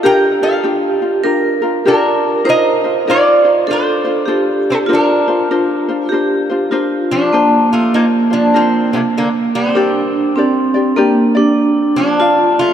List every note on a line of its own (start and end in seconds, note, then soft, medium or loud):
0.00 0.11 F4 medium
0.00 1.28 G4 medium
0.00 0.41 G4 medium
0.04 0.41 D4 medium
0.04 0.41 F4 medium
0.04 0.42 A#4 medium
0.04 0.40 A#4 medium
0.04 0.43 G5 loud
0.42 0.63 D4 soft
0.42 0.63 F4 soft
0.42 1.22 A4 medium
0.42 1.22 F5 medium
0.63 1.02 D4 medium
0.63 1.01 F4 medium
0.63 1.01 G4 medium
1.02 1.23 D4 soft
1.02 1.24 F4 soft
1.24 1.62 D4 medium
1.24 1.62 F4 medium
1.24 1.62 G4 medium
1.24 2.49 A#4 loud
1.24 1.61 A#4 medium
1.62 1.85 D4 soft
1.62 1.85 F4 medium
1.62 1.85 A#4 medium
1.85 2.45 D4 medium
1.85 2.43 D4 medium
1.85 2.45 F4 medium
1.85 2.44 G4 medium
1.85 2.43 A#4 medium
1.85 2.48 A#4 medium
2.45 2.83 D#4 medium
2.45 2.84 F4 medium
2.45 2.83 A#4 medium
2.45 3.71 C5 loud
2.45 2.83 C5 medium
2.49 3.04 A#4 medium
2.49 3.10 D#5 loud
2.84 3.06 D#4 soft
2.84 3.07 F4 soft
2.84 3.07 C5 soft
3.07 3.45 D#4 medium
3.07 3.44 F4 medium
3.07 3.65 F4 medium
3.07 3.45 A#4 medium
3.07 3.43 C5 medium
3.07 3.71 D5 loud
3.44 3.67 D#4 soft
3.44 3.68 F4 medium
3.44 3.67 C5 medium
3.67 4.06 D4 medium
3.67 4.05 F4 medium
3.67 4.64 F4 medium
3.67 4.30 A4 medium
3.67 4.05 A4 medium
3.67 4.03 C5 medium
3.73 4.71 C5 medium
4.05 4.26 D4 soft
4.05 4.27 F4 medium
4.05 4.28 C5 medium
4.26 4.89 D4 medium
4.26 4.89 F4 medium
4.26 4.90 G4 medium
4.26 4.88 A4 medium
4.26 4.90 C5 medium
4.70 4.76 C4 medium
4.70 4.77 A4 medium
4.86 5.27 D4 medium
4.86 6.13 F4 medium
4.86 5.27 F4 medium
4.86 5.27 A#4 medium
4.90 6.69 D4 medium
4.90 5.26 C5 medium
4.95 6.07 A#4 medium
5.28 5.50 D4 soft
5.28 5.50 F4 soft
5.28 5.50 C5 medium
5.51 5.88 D4 medium
5.51 5.88 F4 medium
5.51 5.88 A#4 medium
5.51 5.87 C5 medium
5.88 6.11 D4 soft
5.88 6.11 F4 medium
5.88 6.11 C5 medium
6.07 6.72 G4 medium
6.07 6.70 A4 medium
6.12 6.49 D4 medium
6.12 6.50 F4 medium
6.12 6.49 A#4 medium
6.12 6.48 C5 medium
6.50 6.71 D4 soft
6.50 6.71 F4 medium
6.50 6.71 C5 medium
6.71 7.33 D4 medium
6.71 7.28 F4 medium
6.71 7.33 F4 medium
6.71 7.37 A#4 medium
6.71 7.34 C5 medium
7.11 7.67 F3 medium
7.11 7.73 D4 medium
7.33 9.71 A#3 medium
7.33 7.95 D4 medium
7.33 7.93 F4 medium
7.33 7.94 C5 medium
7.73 7.93 A3 medium
7.73 7.95 F4 medium
7.93 8.05 A#3 medium
7.93 8.04 D#4 loud
7.93 8.30 F4 medium
7.93 8.30 A#4 medium
7.93 8.29 C5 medium
8.30 8.54 F3 medium
8.30 8.53 D4 soft
8.30 8.55 D4 medium
8.30 8.54 F4 soft
8.30 8.53 C5 medium
8.54 8.90 F3 medium
8.54 8.93 C4 medium
8.54 8.92 D4 medium
8.54 8.92 F4 medium
8.54 8.92 A#4 medium
8.54 8.91 C5 medium
8.92 9.00 C3 medium
8.92 8.99 A3 medium
8.92 9.75 D4 soft
8.92 9.74 F4 soft
8.92 9.76 C5 medium
9.17 9.27 D3 medium
9.17 9.28 A#3 medium
9.55 11.32 G3 medium
9.55 11.32 C4 medium
9.75 10.38 D4 medium
9.75 10.37 D4 medium
9.75 10.37 G4 medium
9.75 10.36 A#4 medium
9.75 10.38 D5 medium
10.36 10.99 C4 medium
10.36 10.74 D4 medium
10.36 10.74 G4 medium
10.36 10.74 A#4 medium
10.36 10.73 D5 medium
10.74 10.96 D4 soft
10.74 10.96 G4 medium
10.74 10.96 D5 medium
10.96 11.36 A#3 medium
10.96 11.35 D4 medium
10.96 11.35 G4 medium
10.96 11.34 A#4 medium
10.96 11.34 D5 medium
11.35 12.16 D4 medium
11.35 12.20 D4 soft
11.35 12.19 G4 medium
11.35 12.19 D5 medium
11.96 12.54 F3 medium
11.96 12.59 D4 loud
12.19 12.73 F4 medium
12.19 12.73 D5 medium
12.19 12.73 F5 medium
12.59 12.73 A3 medium
12.59 12.73 F4 loud